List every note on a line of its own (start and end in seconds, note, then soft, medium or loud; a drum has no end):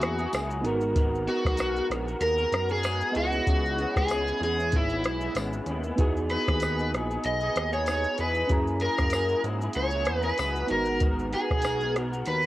0.00 0.27 E2 loud
0.00 0.20 A#3 soft
0.00 0.59 A#3 medium
0.00 0.60 C#4 medium
0.00 0.19 E4 medium
0.00 0.61 E4 medium
0.00 0.30 F#4 medium
0.00 0.17 G#4 soft
0.00 0.61 G#4 medium
0.00 0.62 G#4 medium
0.00 0.62 E5 medium
0.00 3.12 F#5 medium
0.00 3.12 A#5 medium
0.00 cross-stick loud
0.00 closed hi-hat medium
0.00 shaker medium
0.19 0.32 A#3 soft
0.19 0.33 E4 medium
0.19 0.33 G#4 medium
0.19 shaker medium
0.33 0.65 C#2 medium
0.33 0.64 F#3 medium
0.33 0.65 A#3 medium
0.33 0.65 E4 medium
0.33 0.65 G#4 medium
0.33 cross-stick loud
0.33 closed hi-hat medium
0.33 tambourine medium
0.33 shaker medium
0.51 shaker medium
0.61 1.28 G#1 loud
0.61 0.81 G#3 medium
0.61 3.10 B3 medium
0.61 3.13 B3 medium
0.61 0.82 B3 medium
0.61 3.11 D#4 medium
0.61 3.12 F#4 medium
0.61 12.46 G#4 medium
0.61 closed hi-hat medium
0.61 shaker medium
0.66 0.82 F#4 medium
0.66 3.12 A#4 medium
0.66 0.80 A#4 medium
0.81 0.95 B3 medium
0.81 0.96 F#4 medium
0.81 0.96 A#4 medium
0.81 shaker medium
0.96 1.26 G#3 medium
0.96 1.26 B3 loud
0.96 1.28 F#4 medium
0.96 1.28 A#4 medium
0.96 kick loud
0.96 closed hi-hat medium
0.96 shaker medium
1.15 shaker soft
1.27 1.57 G#3 medium
1.27 1.58 B3 medium
1.27 1.87 F#4 loud
1.27 1.59 F#4 medium
1.27 1.59 A#4 medium
1.27 closed hi-hat soft
1.27 shaker soft
1.45 1.81 B1 medium
1.45 kick medium
1.45 cross-stick medium
1.45 shaker medium
1.57 1.89 G#3 medium
1.57 1.90 B3 medium
1.57 1.91 F#4 medium
1.57 1.91 A#4 medium
1.57 cross-stick loud
1.57 closed hi-hat medium
1.57 tambourine medium
1.57 shaker medium
1.76 shaker soft
1.90 2.15 A#1 medium
1.90 2.07 G#3 medium
1.90 2.08 B3 medium
1.90 2.07 F#4 medium
1.90 2.06 A#4 medium
1.90 cross-stick medium
1.90 closed hi-hat medium
1.90 shaker medium
2.07 2.40 B3 soft
2.07 2.39 F#4 medium
2.07 2.37 A#4 medium
2.07 shaker medium
2.21 2.46 D#2 loud
2.21 2.71 A#4 loud
2.21 closed hi-hat medium
2.21 shaker medium
2.38 2.71 B3 soft
2.38 2.70 F#4 soft
2.38 2.68 A#4 medium
2.38 shaker medium
2.52 3.02 F#2 medium
2.52 cross-stick loud
2.52 closed hi-hat medium
2.52 shaker medium
2.69 2.84 B3 soft
2.69 2.84 F#4 soft
2.69 3.13 G#4 loud
2.69 2.84 A#4 medium
2.69 shaker soft
2.83 3.15 G#3 medium
2.83 3.16 B3 medium
2.83 3.16 F#4 medium
2.83 3.17 A#4 medium
2.83 cross-stick loud
2.83 closed hi-hat medium
2.83 tambourine medium
2.83 shaker medium
3.01 shaker medium
3.12 3.41 C#2 loud
3.12 3.33 C#3 medium
3.12 5.61 B3 medium
3.12 5.63 E4 medium
3.12 5.62 D#5 medium
3.12 closed hi-hat medium
3.12 shaker medium
3.16 3.33 G#3 medium
3.16 3.33 B3 medium
3.16 3.31 E4 medium
3.16 3.97 F#4 loud
3.16 5.63 G#4 medium
3.16 5.96 C#5 medium
3.16 10.66 G#5 medium
3.16 8.46 B5 medium
3.32 3.46 G#3 soft
3.32 3.47 B3 medium
3.32 3.47 E4 medium
3.32 shaker medium
3.46 3.86 C#2 loud
3.46 3.77 C#3 medium
3.46 3.78 G#3 medium
3.46 3.79 B3 medium
3.46 3.79 E4 medium
3.46 kick loud
3.46 closed hi-hat medium
3.46 shaker medium
3.66 shaker soft
3.78 4.08 C#3 medium
3.78 4.10 G#3 medium
3.78 4.11 B3 medium
3.78 4.11 E4 medium
3.78 closed hi-hat soft
3.78 shaker soft
3.96 4.32 C#2 medium
3.96 4.43 G#4 medium
3.96 kick loud
3.96 cross-stick medium
3.96 shaker medium
4.08 4.40 C#3 medium
4.08 4.41 G#3 medium
4.08 4.42 B3 medium
4.08 4.42 E4 loud
4.08 cross-stick medium
4.08 closed hi-hat medium
4.08 tambourine medium
4.08 shaker medium
4.28 shaker soft
4.41 4.74 E2 loud
4.41 4.58 C#3 medium
4.41 4.59 G#3 medium
4.41 4.59 B3 medium
4.41 4.57 E4 medium
4.41 4.75 G#4 medium
4.41 closed hi-hat medium
4.41 shaker soft
4.58 4.91 G#3 soft
4.58 4.90 B3 medium
4.58 4.88 E4 medium
4.58 shaker medium
4.72 5.05 G#1 loud
4.72 5.33 E4 medium
4.72 kick loud
4.72 closed hi-hat medium
4.72 shaker medium
4.89 5.23 G#3 soft
4.89 5.21 B3 soft
4.89 5.20 E4 soft
4.89 shaker soft
5.04 5.29 B1 medium
5.04 cross-stick loud
5.04 closed hi-hat medium
5.04 shaker medium
5.21 5.35 G#3 soft
5.21 5.36 B3 soft
5.21 5.35 E4 medium
5.21 shaker medium
5.35 5.60 G#1 medium
5.35 5.66 C#3 medium
5.35 5.67 G#3 medium
5.35 5.68 B3 medium
5.35 5.68 E4 medium
5.35 cross-stick medium
5.35 closed hi-hat medium
5.35 tambourine medium
5.35 shaker medium
5.53 shaker medium
5.66 5.92 D#2 medium
5.66 5.84 C#3 medium
5.66 5.85 G#3 medium
5.66 5.85 B3 medium
5.66 closed hi-hat medium
5.66 shaker medium
5.70 5.83 E4 medium
5.83 5.97 B3 medium
5.83 5.98 E4 medium
5.83 shaker medium
5.88 6.00 G#3 medium
5.96 6.37 E2 loud
5.96 6.28 E3 medium
5.96 8.44 B3 medium
5.96 6.29 B3 medium
5.96 8.45 D#4 medium
5.96 6.30 D#4 loud
5.96 8.46 F#4 medium
5.96 8.47 D#5 medium
5.96 kick loud
5.96 closed hi-hat medium
5.96 shaker medium
6.00 6.31 G#4 loud
6.00 8.47 G#4 medium
6.17 shaker soft
6.29 6.61 E3 medium
6.29 6.60 B3 medium
6.29 6.61 D#4 medium
6.29 6.61 G#4 medium
6.29 6.89 B4 loud
6.29 closed hi-hat soft
6.29 shaker soft
6.48 6.95 D#2 medium
6.48 kick medium
6.48 cross-stick loud
6.48 shaker medium
6.60 6.93 B3 medium
6.60 6.93 D#4 medium
6.60 6.93 G#4 medium
6.60 cross-stick medium
6.60 closed hi-hat medium
6.60 tambourine medium
6.60 shaker medium
6.79 shaker medium
6.92 7.18 A#1 medium
6.92 7.10 E3 medium
6.92 7.10 B3 medium
6.92 7.10 D#4 medium
6.92 7.08 G#4 medium
6.92 cross-stick medium
6.92 closed hi-hat soft
6.92 shaker medium
7.10 7.43 B3 soft
7.10 7.42 D#4 medium
7.10 7.40 G#4 medium
7.10 shaker medium
7.24 7.50 B1 medium
7.24 7.73 D#5 medium
7.24 closed hi-hat medium
7.24 shaker medium
7.41 7.74 B3 soft
7.41 7.73 D#4 soft
7.41 7.71 G#4 medium
7.41 shaker soft
7.56 8.06 D#2 medium
7.56 cross-stick loud
7.56 closed hi-hat medium
7.56 shaker medium
7.73 7.87 B3 soft
7.73 7.87 D#4 medium
7.73 7.87 G#4 medium
7.73 8.20 C#5 loud
7.73 shaker medium
7.86 8.18 B3 medium
7.86 8.19 D#4 medium
7.86 8.20 G#4 medium
7.86 cross-stick loud
7.86 closed hi-hat medium
7.86 tambourine medium
7.86 shaker medium
8.04 shaker medium
8.18 8.44 E2 medium
8.18 8.35 E3 medium
8.18 8.36 B3 medium
8.18 8.36 D#4 medium
8.18 8.34 G#4 medium
8.18 8.49 B4 medium
8.18 closed hi-hat medium
8.18 shaker medium
8.35 8.51 D#4 medium
8.35 8.50 G#4 medium
8.35 shaker medium
8.39 8.50 B3 soft
8.47 8.88 F#2 loud
8.47 8.79 F#3 medium
8.47 8.81 A#3 medium
8.47 10.64 C#4 medium
8.47 10.65 E4 medium
8.47 8.82 E4 medium
8.47 10.66 G#4 medium
8.47 12.46 F#5 medium
8.47 kick loud
8.47 closed hi-hat medium
8.47 shaker medium
8.51 8.82 G#4 medium
8.51 12.46 A#5 medium
8.51 10.67 A#5 medium
8.67 shaker soft
8.80 9.11 F#3 medium
8.80 9.12 A#3 medium
8.80 9.13 E4 medium
8.80 9.41 A#4 loud
8.80 closed hi-hat soft
8.80 shaker soft
8.84 9.14 G#4 medium
8.98 9.35 F#2 medium
8.98 kick medium
8.98 cross-stick medium
8.98 shaker medium
9.10 9.42 F#3 medium
9.10 9.44 A#3 medium
9.10 9.45 E4 medium
9.10 cross-stick medium
9.10 closed hi-hat medium
9.10 tambourine medium
9.10 shaker medium
9.15 9.45 G#4 medium
9.29 shaker soft
9.44 9.69 G#2 medium
9.44 9.61 F#3 medium
9.44 9.62 A#3 medium
9.44 9.62 E4 medium
9.44 9.60 G#4 medium
9.44 closed hi-hat medium
9.44 shaker soft
9.61 9.94 A#3 soft
9.61 9.93 E4 medium
9.61 9.91 G#4 medium
9.61 shaker medium
9.73 10.09 C#2 loud
9.73 10.24 C#5 loud
9.73 closed hi-hat medium
9.73 shaker medium
9.91 10.24 E4 soft
9.91 10.22 G#4 medium
9.91 shaker medium
9.96 10.26 A#3 soft
10.05 10.32 E2 medium
10.05 cross-stick loud
10.05 closed hi-hat medium
10.05 shaker medium
10.23 10.38 E4 medium
10.23 10.38 G#4 medium
10.23 10.67 B4 loud
10.23 shaker medium
10.27 10.40 A#3 soft
10.38 10.64 C#2 medium
10.38 10.69 F#3 medium
10.38 10.70 E4 medium
10.38 10.71 G#4 medium
10.38 cross-stick medium
10.38 closed hi-hat medium
10.38 tambourine medium
10.38 shaker medium
10.56 shaker medium
10.67 11.34 G#1 loud
10.67 10.87 G#3 medium
10.67 12.46 B3 medium
10.67 10.87 B3 medium
10.67 12.46 B3 medium
10.67 12.46 D#4 medium
10.67 12.46 F#4 medium
10.67 closed hi-hat medium
10.67 shaker medium
10.71 10.87 F#4 medium
10.71 11.00 A#4 medium
10.71 10.86 A#4 medium
10.71 12.46 A#5 medium
10.85 11.01 F#4 soft
10.85 11.01 A#4 medium
10.85 shaker medium
10.90 11.01 B3 soft
11.00 11.31 G#3 medium
11.00 11.32 B3 medium
11.00 11.33 F#4 medium
11.00 11.34 A#4 medium
11.00 kick loud
11.00 closed hi-hat medium
11.00 shaker medium
11.19 shaker soft
11.32 11.63 G#3 medium
11.32 11.63 B3 medium
11.32 11.64 F#4 medium
11.32 11.92 G#4 loud
11.32 11.65 A#4 medium
11.32 closed hi-hat soft
11.32 shaker soft
11.50 12.23 B1 medium
11.50 kick loud
11.50 cross-stick medium
11.50 shaker medium
11.62 11.93 G#3 medium
11.62 11.95 B3 medium
11.62 11.96 F#4 medium
11.62 cross-stick loud
11.62 closed hi-hat medium
11.62 tambourine medium
11.62 shaker medium
11.66 11.96 A#4 medium
11.81 shaker medium
11.94 12.12 G#3 medium
11.94 12.13 B3 medium
11.94 12.12 F#4 medium
11.94 12.11 A#4 medium
11.94 cross-stick medium
11.94 closed hi-hat medium
11.94 shaker medium
12.12 12.45 B3 soft
12.12 12.43 F#4 medium
12.12 12.44 A#4 medium
12.12 shaker medium
12.25 12.46 D#2 medium
12.25 12.46 B4 medium
12.25 closed hi-hat medium
12.25 shaker medium
12.42 shaker soft